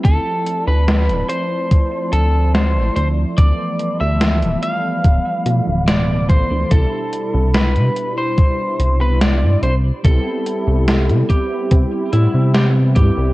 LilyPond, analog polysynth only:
\new Staff \with { instrumentName = "Analog polysynth" } { \time 4/4 \key a \minor \tempo 4 = 72 <f a c' e'>2~ <f a c' e'>8. <f a c' e'>4~ <f a c' e'>16 | <e f a b>2~ <e f a b>8 <b, e f a>4. | <b, g d' e'>2~ <b, g d' e'>8. <g b d' e'>8. r8 | <g b c' e'>2~ <g b c' e'>8 <g b c' e'>4. | }